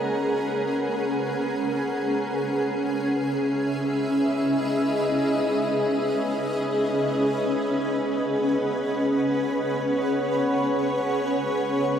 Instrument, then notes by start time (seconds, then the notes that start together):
ambient pad
Already playing: C#4 G#4 A#4 B4 F#5
2.71 E5
2.92 B4
3.36 D#5
7.21 F#5
8.85 C#5